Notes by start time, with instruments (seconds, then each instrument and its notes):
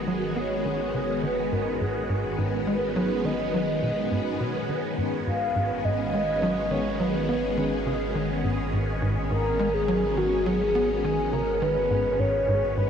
Already playing: analog synth bass G#1, string machine D#3 G#3 B3 C#4 F#4, synth texture B3 G#4
0.08 analog synth bass F#3
0.36 analog synth bass B3, soft synth lead C#5
0.65 analog synth bass D#3
0.94 analog synth bass C#3
1.23 analog synth bass D#3, soft synth lead B4
1.52 analog synth bass G#2, soft synth lead A#4
1.81 analog synth bass G#2, soft synth lead G#4
2.09 analog synth bass G#2
2.38 analog synth bass G#2, soft synth lead B4
2.67 analog synth bass G#3
2.96 analog synth bass F#3
3.25 analog synth bass D#3, soft synth lead D#5
3.54 analog synth bass F#3
3.83 analog synth bass B2
4.11 analog synth bass G#2
4.40 analog synth bass B2
4.69 analog synth bass G#1 D#3, synth texture G#4
4.98 analog synth bass G#2
5.27 analog synth bass G#2, soft synth lead F5
5.56 analog synth bass G#2
5.85 analog synth bass G#2, soft synth lead D#5
6.13 analog synth bass G#3
6.42 analog synth bass F#3
6.71 analog synth bass D#3, soft synth lead C#5
7.00 analog synth bass F#3, soft synth lead B4
7.29 analog synth bass B3
7.57 analog synth bass D#3
7.86 analog synth bass C#3
8.15 analog synth bass D#3
8.44 analog synth bass G#2
8.73 analog synth bass G#2
9.02 analog synth bass G#2
9.31 analog synth bass G#2, soft synth lead A#4
9.59 analog synth bass G#3
9.74 soft synth lead G#4
9.88 analog synth bass F#3
10.17 analog synth bass D#3, soft synth lead F#4
10.46 analog synth bass F#3, soft synth lead G#4
10.75 analog synth bass B3
11.04 analog synth bass D#3, soft synth lead G#4
11.33 analog synth bass C#3, soft synth lead A#4
11.62 analog synth bass D#3, soft synth lead B4
11.90 analog synth bass G#2
12.19 analog synth bass G#2, soft synth lead C#5
12.48 analog synth bass G#2
12.77 analog synth bass G#2, soft synth lead B4